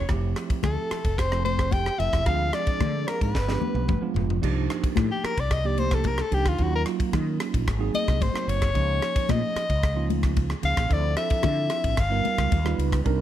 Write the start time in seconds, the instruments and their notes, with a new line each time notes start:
0.09 fretless electric bass F1, tine electric piano F3 A3 C4 E4 G4, kick, cross-stick, ride, muted conga
0.36 cross-stick, ride
0.50 kick, ride
0.63 fretless electric bass D2, trombone A3, soprano saxophone A4, kick, cross-stick, ride, high conga
0.91 muted fretless electric bass stroke, cross-stick, ride, muted conga
1.05 fretless electric bass F1, kick, ride
1.18 trombone C4, soprano saxophone C5, kick, cross-stick, ride, muted conga
1.31 tine electric piano F3 A3 C4 E4 A4, cross-stick
1.45 trombone C4, soprano saxophone C5, ride, muted conga, high conga
1.59 kick, cross-stick, ride
1.71 trombone G4, soprano saxophone G5, kick, ride, high conga
1.86 cross-stick
1.98 fretless electric bass F1, tine electric piano F3 A3 C4 E4 A4, trombone E4, soprano saxophone E5, ride
2.13 fretless electric bass E1, kick, cross-stick, ride
2.26 fretless electric bass D2, tine electric piano F3 G#3 C4 D4 G#4, trombone F4, soprano saxophone F5, kick, cross-stick, ride, muted conga
2.53 tine electric piano F3 G#3 C4 D4 G#4, trombone D4, soprano saxophone D5, cross-stick, ride
2.67 muted fretless electric bass stroke, kick, ride
2.80 fretless electric bass D3, kick, cross-stick, ride, high conga, low conga
3.08 trombone A#3, soprano saxophone A#4, cross-stick, ride, muted conga
3.21 fretless electric bass G#2, trombone B3, soprano saxophone B4, kick, ride
3.35 fretless electric bass G1, kick, snare, muted conga
3.47 tine electric piano F3 G#3 B3 D4 G4, snare
3.62 muted conga, high conga, low conga
3.74 fretless electric bass B1, high tom
3.88 fretless electric bass G1, kick, mid tom, high conga
4.01 tine electric piano F3 G#3 B3 D4 F4
4.14 fretless electric bass F1, floor tom
4.30 floor tom
4.42 fretless electric bass C2, tine electric piano F3 A#3 D4 D#4 G4, kick, crash, muted conga
4.70 cross-stick, ride
4.84 kick, ride
4.96 fretless electric bass A2, kick, cross-stick, ride, high conga
5.12 soprano saxophone G4
5.23 soprano saxophone A#4, muted fretless electric bass stroke, cross-stick, ride, muted conga
5.37 fretless electric bass C2, soprano saxophone D5, kick, ride
5.51 soprano saxophone D#5, kick, cross-stick, ride, muted conga
5.64 tine electric piano F3 A#3 D4 D#4 G4, soprano saxophone D5
5.78 soprano saxophone C5, ride, muted conga, high conga
5.91 soprano saxophone A4, kick, cross-stick, ride
6.04 soprano saxophone A#4, kick, ride, high conga
6.18 soprano saxophone A4, cross-stick
6.31 fretless electric bass C2, tine electric piano F3 A#3 D4 D#4 G4, soprano saxophone G4, ride
6.45 fretless electric bass D2, soprano saxophone F4, kick, cross-stick, ride
6.58 fretless electric bass D#2, tine electric piano F#3 A#3 C#4 D#4 F4, kick, ride, muted conga
6.63 soprano saxophone F#4
6.76 soprano saxophone A#4
6.85 tine electric piano F#3 A#3 C#4 D#4 F4, cross-stick, ride
7.00 muted fretless electric bass stroke, kick, ride
7.13 fretless electric bass D#3, kick, cross-stick, ride, high conga, low conga
7.40 cross-stick, ride, muted conga
7.54 fretless electric bass A#1, kick, ride
7.67 fretless electric bass G#1, kick, cross-stick, ride, muted conga
7.78 tine electric piano F#3 A#3 C4 D#4 G#4
7.94 soprano saxophone D#5, ride, muted conga, high conga
8.08 fretless electric bass C2, kick, cross-stick, ride
8.21 fretless electric bass G#1, soprano saxophone C5, kick, ride, high conga
8.32 tine electric piano F#3 A#3 C4 D#4 F#4, muted fretless electric bass stroke, cross-stick
8.47 fretless electric bass F#1, soprano saxophone C#5, ride
8.62 kick, cross-stick, ride
8.73 fretless electric bass C#2, tine electric piano F3 A#3 C#4 D#4 G#4, kick, ride, muted conga
9.02 cross-stick, ride
9.16 kick, ride
9.29 fretless electric bass A#2, soprano saxophone D#5, kick, cross-stick, ride, high conga
9.55 muted fretless electric bass stroke, cross-stick, ride, muted conga
9.70 fretless electric bass C#2, kick, ride
9.82 kick, cross-stick, ride, muted conga
9.95 tine electric piano F3 A#3 C#4 D#4 F4
10.10 ride, muted conga, high conga
10.23 kick, cross-stick, ride
10.36 kick, ride, high conga
10.50 cross-stick
10.62 fretless electric bass C#2, tine electric piano F3 A#3 C#4 D#4 G#4, soprano saxophone F5, ride
10.77 fretless electric bass A#1, kick, cross-stick, ride
10.89 fretless electric bass D2, tine electric piano F3 C4 D4 E4 A4, kick, ride, muted conga
10.93 soprano saxophone D5
11.16 tine electric piano F3 C4 D4 E4 A4, soprano saxophone E5, cross-stick, ride
11.30 muted fretless electric bass stroke, kick, ride
11.43 fretless electric bass D3, kick, cross-stick, ride, high conga, low conga
11.70 cross-stick, ride, muted conga
11.84 fretless electric bass A1, kick, ride
11.97 fretless electric bass G1, soprano saxophone F5, kick, cross-stick, ride, muted conga
12.10 tine electric piano G3 B3 D#4 F4 A#4
12.25 ride, muted conga, high conga
12.38 fretless electric bass C#2, kick, cross-stick, ride
12.52 fretless electric bass D#2, kick, ride, high conga
12.64 tine electric piano G3 B3 D#4 F4 B4, cross-stick
12.78 fretless electric bass C#2, ride
12.92 kick, cross-stick, ride
13.04 fretless electric bass C2, tine electric piano G3 C4 D4 D#4 A#4, kick, ride, muted conga